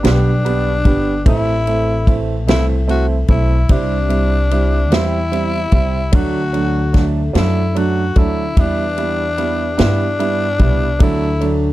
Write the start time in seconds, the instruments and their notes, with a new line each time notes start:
0.03 upright bass B1, steel-string acoustic guitar G2 D3 G3 B3 D4 G4, grand piano B3 D4 G4, tenor saxophone D4, snare, ride
0.45 grand piano B3 D4 G4, ride
0.85 upright bass G1, steel-string acoustic guitar G3 B3 D4 G4, grand piano B3 D4 G4, kick, ride
1.25 upright bass A1, steel-string acoustic guitar A2 E3 A3 C4 E4 A4, grand piano A3 C4 E4, tenor saxophone E4, kick, ride
1.67 grand piano A3 C4 E4, ride
2.06 steel-string acoustic guitar A3 C4 E4 A4, grand piano A3 C4 E4, kick, ride
2.47 upright bass C2, steel-string acoustic guitar A2 E3 A3 C4 E4 A4, grand piano A3 C4 E4, tenor saxophone E4, snare, ride
2.88 grand piano A3 C4 E4, tenor saxophone F#4, ride
3.28 upright bass B1, grand piano A3 C4 E4, steel-string acoustic guitar C4 E4 A4, tenor saxophone E4, kick, ride
3.69 upright bass C2, steel-string acoustic guitar C3 G3 C4 E4 G4, grand piano G3 C4 E4, tenor saxophone D4, kick, ride
4.09 grand piano G3 C4 E4, ride
4.50 steel-string acoustic guitar G3 C4 E4 G4, grand piano G3 C4 E4, ride
4.91 upright bass E2, steel-string acoustic guitar C3 G3 C4 E4 G4, grand piano G3 C4 E4, tenor saxophone E4, snare, ride
5.32 grand piano G3 C4 E4, ride
5.72 upright bass C2, grand piano G3 C4 E4, steel-string acoustic guitar C4 E4 G4, kick, ride
6.12 upright bass D2, steel-string acoustic guitar D3 A3 D4 F#4 A4, grand piano F#3 A3 D4, tenor saxophone F#4, kick, ride
6.53 grand piano F#3 A3 D4, ride
6.93 grand piano F#3 A3 D4, steel-string acoustic guitar A3 D4 F#4 A4, kick, snare, ride
7.33 upright bass F#2, steel-string acoustic guitar D3 A3 D4 F#4 A4, grand piano F#3 A3 D4, snare, ride
7.38 tenor saxophone E4
7.75 grand piano F#3 A3 D4, tenor saxophone F#4, ride
8.15 upright bass D2, grand piano F#3 A3 D4, steel-string acoustic guitar D4 F#4 A4, tenor saxophone E4, kick, ride
8.57 upright bass E2, steel-string acoustic guitar E3 G3 B3 E4 G4, grand piano G3 B3 E4, tenor saxophone D4, kick, ride
8.97 grand piano G3 B3 E4, ride
9.37 steel-string acoustic guitar G3 B3 E4 G4, grand piano G3 B3 E4, ride
9.78 upright bass G2, steel-string acoustic guitar E3 G3 B3 E4 G4, grand piano G3 B3 E4, tenor saxophone D4, snare, ride
10.19 grand piano G3 B3 E4, ride
10.59 upright bass C2, grand piano G3 B3 E4, steel-string acoustic guitar B3 E4 G4, kick, ride
10.99 upright bass D2, steel-string acoustic guitar D3 A3 D4 F#4 A4, grand piano F#3 A3 D4, tenor saxophone E4, kick, ride
11.41 grand piano F#3 A3 D4, ride